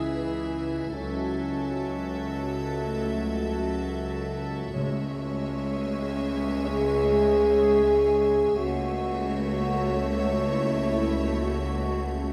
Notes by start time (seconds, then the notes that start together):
Already playing: C#2 E3 E4 G#4 E5 G#5
0.94 C#2 F#3 C#4 F#4 A4 E5 A5
2.82 A3
4.74 C#2 C#3 G#3 C#4 G#4 C#5 E5 G#5
6.67 G#4
8.56 C#2 A3 F#4 C#5 E5 A5
10.48 E4
11.43 F#4